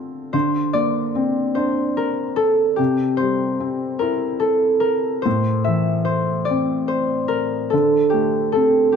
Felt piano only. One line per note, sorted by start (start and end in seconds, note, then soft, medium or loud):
0.00 0.30 D3 medium
0.00 0.36 A3 soft
0.00 0.30 C4 medium
0.00 0.30 F4 soft
0.34 2.74 D3 medium
0.74 2.34 A#3 soft
1.15 2.74 C4 medium
1.56 2.75 D4 soft
2.79 5.22 C3 medium
3.20 4.80 G3 soft
3.60 5.21 C4 medium
4.01 5.22 E4 soft
5.26 7.69 A2 medium
5.67 7.28 E3 soft
6.50 7.69 C4 soft
7.73 8.96 D3 medium
8.13 8.94 A3 soft
8.55 8.96 C4 soft